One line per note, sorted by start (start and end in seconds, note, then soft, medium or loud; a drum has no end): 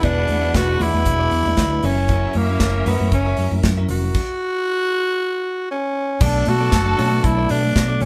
0.00 0.24 E1 loud
0.00 1.80 E3 medium
0.00 0.81 F#3 medium
0.00 0.03 G#3 medium
0.00 0.27 G#3 medium
0.00 1.79 B3 medium
0.00 0.27 B3 medium
0.00 0.04 D4 medium
0.00 1.79 D4 medium
0.00 1.80 D4 medium
0.00 0.27 D4 medium
0.00 0.04 E4 medium
0.00 0.27 E4 medium
0.00 1.79 F#4 medium
0.00 1.80 G#4 medium
0.00 0.05 B4 medium
0.00 1.79 B4 medium
0.00 1.46 D5 medium
0.00 1.79 F#5 medium
0.00 kick loud
0.00 closed hi-hat medium
0.00 muted conga soft
0.00 low conga medium
0.04 0.57 D4 loud
0.04 0.28 G#4 medium
0.04 0.27 B4 medium
0.04 0.28 D5 medium
0.27 0.49 E2 medium
0.27 muted clean electric guitar stroke soft
0.27 open hi-hat medium
0.27 muted conga soft
0.27 high conga medium
0.42 0.66 G#3 medium
0.42 0.53 B3 soft
0.42 0.66 D4 medium
0.42 0.54 E4 medium
0.42 0.66 E4 medium
0.42 0.54 G#4 medium
0.42 0.66 B4 medium
0.42 0.55 E5 medium
0.54 0.75 E1 medium
0.54 0.84 F#4 loud
0.54 kick loud
0.54 snare loud
0.54 closed hi-hat medium
0.54 muted conga soft
0.54 high conga medium
0.68 muted clean electric guitar stroke soft
0.80 0.91 E2 loud
0.80 0.87 F#3 medium
0.80 0.95 B3 medium
0.80 1.21 D4 medium
0.80 0.94 E4 loud
0.80 1.21 E4 medium
0.80 1.87 E4 loud
0.80 0.94 G#4 loud
0.80 1.21 B4 medium
0.80 0.93 D5 loud
0.80 open hi-hat medium
0.80 muted conga soft
0.80 high conga medium
0.80 low conga medium
0.87 1.23 G#3 medium
0.94 1.03 E2 loud
0.94 1.05 B3 medium
0.94 1.05 E4 medium
0.94 1.06 G#4 medium
0.94 1.06 D5 medium
0.94 high conga medium
1.05 1.27 E1 loud
1.05 muted clean electric guitar stroke soft
1.05 kick loud
1.05 closed hi-hat medium
1.19 1.30 B3 medium
1.19 1.31 E4 medium
1.19 1.32 G#4 medium
1.19 1.32 D5 loud
1.31 1.43 E2 loud
1.31 1.49 B3 medium
1.31 1.45 E4 medium
1.31 1.45 G#4 medium
1.31 1.45 D5 medium
1.31 open hi-hat medium
1.45 1.55 E2 medium
1.45 1.60 G#3 medium
1.45 1.61 D4 medium
1.45 1.61 E4 medium
1.45 1.61 D5 loud
1.45 muted clean electric guitar stroke soft
1.45 high conga medium
1.57 1.78 D2 medium
1.57 muted clean electric guitar stroke soft
1.57 kick medium
1.57 snare loud
1.57 closed hi-hat medium
1.71 1.83 G#3 medium
1.71 1.84 D4 medium
1.71 1.83 E4 medium
1.71 1.84 B4 medium
1.71 muted clean electric guitar stroke soft
1.82 2.25 F#1 loud
1.82 2.35 F#3 medium
1.82 4.13 F#3 medium
1.82 4.13 A#3 medium
1.82 4.11 C#4 medium
1.82 2.35 C#4 medium
1.82 2.04 C#4 medium
1.82 2.38 C#4 medium
1.82 2.35 E4 medium
1.82 4.13 E4 medium
1.82 1.97 F#4 medium
1.82 4.11 A#4 medium
1.82 1.96 A#4 medium
1.82 2.36 A#4 medium
1.82 4.11 E5 medium
1.82 1.96 E5 medium
1.82 open hi-hat medium
1.82 muted conga soft
1.82 low conga medium
1.97 muted clean electric guitar stroke soft
2.08 2.33 C#4 medium
2.08 2.33 F#4 medium
2.08 2.33 A#4 medium
2.08 2.34 E5 loud
2.08 kick loud
2.08 closed hi-hat medium
2.08 muted conga soft
2.08 low conga medium
2.33 2.56 F#2 medium
2.33 2.90 A#3 loud
2.33 muted clean electric guitar stroke soft
2.33 open hi-hat soft
2.33 muted conga soft
2.33 high conga medium
2.49 2.72 F#3 medium
2.49 2.72 C#4 medium
2.49 2.60 C#4 medium
2.49 2.72 E4 medium
2.49 2.60 F#4 medium
2.49 2.60 A#4 medium
2.49 2.72 A#4 medium
2.49 2.61 E5 medium
2.60 2.81 F#1 loud
2.60 muted clean electric guitar stroke soft
2.60 kick loud
2.60 snare loud
2.60 closed hi-hat medium
2.60 high conga medium
2.75 muted clean electric guitar stroke medium
2.86 2.97 F#2 medium
2.86 3.26 F#3 medium
2.86 3.13 B3 medium
2.86 3.26 C#4 medium
2.86 3.00 C#4 medium
2.86 3.27 E4 medium
2.86 3.00 F#4 medium
2.86 2.99 A#4 loud
2.86 3.27 A#4 medium
2.86 2.99 E5 loud
2.86 open hi-hat medium
2.86 high conga medium
2.86 low conga medium
3.00 3.10 F#2 loud
3.00 3.11 C#4 medium
3.00 3.12 F#4 medium
3.00 3.12 A#4 medium
3.00 3.12 E5 medium
3.00 high conga medium
3.12 3.33 F#1 loud
3.12 3.60 C#4 medium
3.12 muted clean electric guitar stroke soft
3.12 kick loud
3.12 closed hi-hat medium
3.26 3.37 C#4 medium
3.26 3.37 F#4 medium
3.26 3.38 A#4 medium
3.26 3.38 E5 medium
3.37 3.49 F#2 medium
3.37 3.56 C#4 medium
3.37 3.51 F#4 medium
3.37 3.51 A#4 medium
3.37 3.51 E5 medium
3.37 open hi-hat medium
3.37 muted conga soft
3.51 3.61 F#2 medium
3.51 3.66 F#3 medium
3.51 3.67 C#4 medium
3.51 3.67 E4 medium
3.51 3.67 A#4 medium
3.51 muted clean electric guitar stroke medium
3.51 high conga medium
3.63 3.84 F#2 medium
3.63 muted clean electric guitar stroke soft
3.63 kick loud
3.63 snare loud
3.63 closed hi-hat medium
3.77 4.00 F#3 medium
3.77 4.01 C#4 medium
3.77 3.89 C#4 medium
3.77 4.01 E4 medium
3.77 3.89 F#4 medium
3.77 3.89 A#4 medium
3.77 4.01 A#4 medium
3.77 3.89 E5 medium
3.89 4.10 F1 medium
3.89 5.66 F#4 loud
3.89 muted clean electric guitar stroke soft
3.89 open hi-hat medium
3.89 muted conga soft
3.89 low conga medium
4.03 muted clean electric guitar stroke soft
4.14 kick loud
4.14 crash medium
5.71 6.23 C#4 medium
6.20 6.42 B1 loud
6.20 6.44 F#3 medium
6.20 6.44 A3 medium
6.20 7.99 A3 medium
6.20 7.99 B3 medium
6.20 6.45 B3 medium
6.20 6.45 D4 medium
6.20 7.99 D4 loud
6.20 6.45 D4 medium
6.20 6.50 D4 loud
6.20 6.45 F#4 medium
6.20 7.72 A4 loud
6.20 6.45 A4 medium
6.20 6.45 D5 medium
6.20 7.72 A5 loud
6.20 kick loud
6.20 crash loud
6.20 low conga medium
6.45 6.68 B2 loud
6.45 7.26 F#4 loud
6.45 open hi-hat medium
6.45 muted conga soft
6.45 high conga medium
6.60 6.83 F#3 medium
6.60 6.84 A3 medium
6.60 6.84 B3 medium
6.60 6.84 D4 medium
6.60 6.71 D4 soft
6.60 6.72 F#4 soft
6.60 6.72 A4 medium
6.60 6.84 A4 medium
6.60 6.73 D5 medium
6.72 6.93 F#1 loud
6.72 muted clean electric guitar stroke soft
6.72 kick loud
6.72 snare loud
6.72 closed hi-hat medium
6.72 muted conga soft
6.72 high conga medium
6.86 muted clean electric guitar stroke medium
6.97 7.19 B2 medium
6.97 7.22 F#3 medium
6.97 7.22 A3 medium
6.97 7.22 B3 medium
6.97 7.11 D4 medium
6.97 7.22 D4 medium
6.97 7.11 F#4 loud
6.97 7.11 A4 medium
6.97 7.22 A4 medium
6.97 7.10 D5 loud
6.97 open hi-hat medium
6.97 muted conga soft
6.97 high conga medium
7.11 7.23 D4 soft
7.11 7.24 D5 medium
7.11 high conga medium
7.24 7.45 B1 loud
7.24 7.52 E4 loud
7.24 muted clean electric guitar stroke soft
7.24 kick loud
7.24 closed hi-hat medium
7.24 muted conga soft
7.37 7.68 F#3 medium
7.37 7.68 A3 medium
7.37 7.69 B3 medium
7.37 7.69 D4 medium
7.37 7.48 D4 medium
7.37 7.49 F#4 medium
7.37 7.49 A4 medium
7.37 7.69 A4 medium
7.37 7.50 D5 medium
7.49 7.71 B2 medium
7.49 7.67 D4 medium
7.49 8.04 D4 loud
7.49 7.63 F#4 medium
7.49 7.63 A4 medium
7.49 7.62 D5 medium
7.49 open hi-hat medium
7.49 muted conga soft
7.63 muted clean electric guitar stroke soft
7.63 high conga medium
7.76 7.96 B2 loud
7.76 muted clean electric guitar stroke soft
7.76 kick loud
7.76 snare loud
7.76 closed hi-hat medium
7.88 8.00 F#3 medium
7.88 8.01 A3 medium
7.88 8.01 B3 medium
7.88 8.01 D4 medium
7.88 8.02 D4 medium
7.88 8.01 F#4 medium
7.88 8.01 A4 medium
7.88 8.02 A4 medium
7.88 8.02 D5 medium
8.01 8.05 A#1 medium
8.01 8.05 F#3 medium
8.01 8.05 A#3 medium
8.01 8.05 C#4 loud
8.01 8.05 C#4 medium
8.01 8.05 F#4 loud
8.01 8.05 F#5 loud
8.01 muted clean electric guitar stroke soft
8.01 open hi-hat medium
8.01 high conga medium
8.01 low conga medium